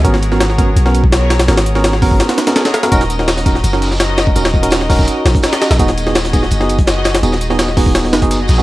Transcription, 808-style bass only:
\new Staff \with { instrumentName = "808-style bass" } { \clef bass \time 4/4 \key ees \minor \tempo 4 = 167 aes,,2 ces,2 | aes,,2 r2 | ees,,2 ges,,2 | ees,,2 r8 bes,,16 r4 bes,,16 |
dis,,2 fis,,2 | dis,,2~ dis,,8 fis,,4 bes,,8 | }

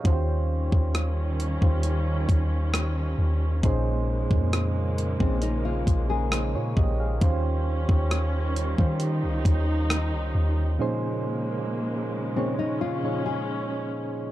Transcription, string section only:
\new Staff \with { instrumentName = "String section" } { \clef bass \time 4/4 \key ees \mixolydian \tempo 4 = 67 << { des'1 | bes1 | des'2 ees'2 | bes2 des'2 | } \\ { <ees g>1 | <des aes>1 | <ees g>1 | <des aes>1 | } >> }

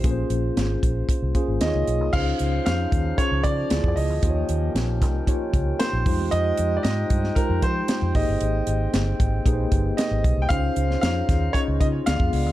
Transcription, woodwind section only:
\new Staff \with { instrumentName = "Woodwind section" } { \time 4/4 \key des \lydian \tempo 4 = 115 << { r1 | <des ees' c''>2. <d aes b>4 | <ees des'>2.~ <ees des'>8 <f ees'>8~ | <f ees'>2.~ <f ees'>8 <aes c'>8~ |
<aes c'>1 | <des ees' c''>2. <d aes b>4 | } \\ { r1 | f1 | g''2.~ g''8 aes8~ | aes2.~ aes8 r8 |
r1 | f'1 | } >> }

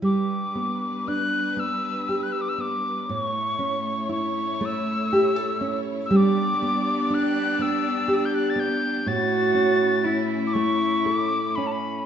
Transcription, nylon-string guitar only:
\new Staff \with { instrumentName = "Nylon-string guitar" } { \time 6/8 \key g \lydian \tempo 4. = 40 g8 b8 d'8 b8 g'8 b8 | a,8 cis'8 e'8 a8 g'16 a'16 cis'8 | g8 b8 d'8 b8 g'8 b8 | a,8 cis'8 e'8 a8 a'8 cis'8 | }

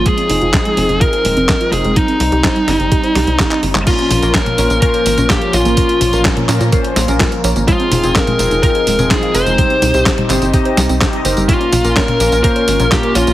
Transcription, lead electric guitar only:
\new Staff \with { instrumentName = "Lead electric guitar" } { \time 4/4 \key bes \dorian \tempo 4 = 126 aes'2 bes'4. aes'8 | ees'2.~ ees'8 r8 | f'4 bes'4 bes'4 g'8 f'8~ | f'4 r2. |
f'4 bes'4 bes'4 aes'8 c''8~ | c''4 r2. | f'4 bes'4 bes'4 g'8 f'8 | }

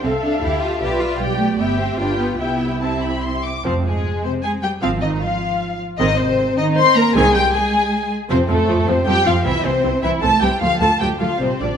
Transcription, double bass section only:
\new Staff \with { instrumentName = "Double bass section" } { \clef bass \time 3/4 \key c \major \tempo 4 = 154 c,4 d,4 b,,4 | b,,4 g,,4 g,,4 | c,2~ c,8 r8 | \key f \minor f,,4 r2 |
aes,,4 r2 | aes,,4 r2 | c,4 r2 | \key f \major f,8 f,8 f,8 f,8 f,8 f,8 |
c,8 c,8 c,8 c,8 c,8 c,8 | d,8 d,8 d,8 d,8 bes,,8 bes,,8 | }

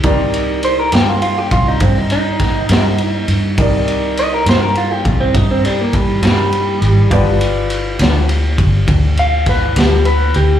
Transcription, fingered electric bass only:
\new Staff \with { instrumentName = "Fingered electric bass" } { \clef bass \time 12/8 \key c \minor \tempo 4. = 68 c,4. g,4 c,8 g,4. g,4 g,8 | c,4. g,4 c,8 g,4. g,4 aes,,8 | g,,4. d,4 g,,8 d,4. d,4 d,8 | }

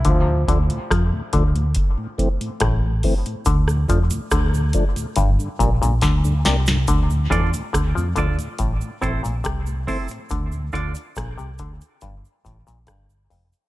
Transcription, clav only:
\new Staff \with { instrumentName = "Clav" } { \clef bass \time 4/4 \key d \minor \tempo 4 = 70 d8 d16 r16 f16 r16 d8 r4 a,8 r8 | d8 f16 r16 d8 r8 g,16 r16 bes,16 bes,16 d8 c8 | d8 e16 r16 d16 f16 d16 r16 a,16 r16 a,16 bes,16 c8 r8 | d8 d16 r16 bes,16 c16 d16 r16 g,16 r16 a,16 bes,16 g,8 f,16 r16 | }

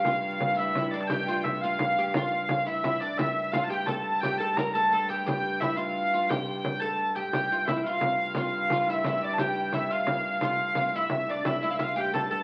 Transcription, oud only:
\new Staff \with { instrumentName = "Oud" } { \time 6/8 \key f \major \tempo 4. = 116 f'4~ f'16. f'32 e'8 e'8 d'8 | g'8 f'4 f'4 g'8 | f'4. e'8 e'8 d'8 | e'4 f'8 g'8 a'4 |
g'8 a'8 bes'8 a'8 a'8 g'8 | g'4 e'8 f'4 f'8 | g'4. a'4 g'8 | g'8 f'8 e'8 f'4. |
f'4 f'8 e'8 e'4 | g'4 e'8 f'4. | f'4 f'8 e'4 d'8 | e'8 e'16 e'16 f'8 g'8 a'8 a'8 | }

